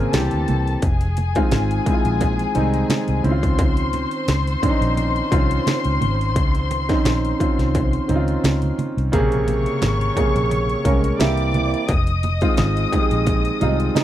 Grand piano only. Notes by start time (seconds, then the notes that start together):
Already playing: C3 C#3 A#3 C4 G#4 A#4
0.13 E3 A#3 C4 G4
1.35 D#3 G#3 C4 F4
1.86 D#3 G#3 C4 E4
1.94 F4
2.55 D#3 G3 C4 D#4
2.62 G#3
3.24 D#3 C4 C#4 E4
3.31 F4
4.62 D#3 C4 C#4 D4
4.70 D#4
5.31 D#3 C4 C#4 F4
6.89 D#3 C4 C#4 D#4
7.39 D#3 C4 C#4 F4
8.08 D#3 C4 C#4 D#4
8.16 F4
9.12 C3 C#3 A#3 G#4
10.16 C3 C#3 A#3 G#4
10.84 G#3 A#3 C#4 A#4
11.19 E3 A#3 C4 G4
12.41 D#3 G#3 C4 F4
12.92 D#3 G#3 C4 G4
13.00 G#4
13.61 D#3 G3 C4 F4
13.68 G#3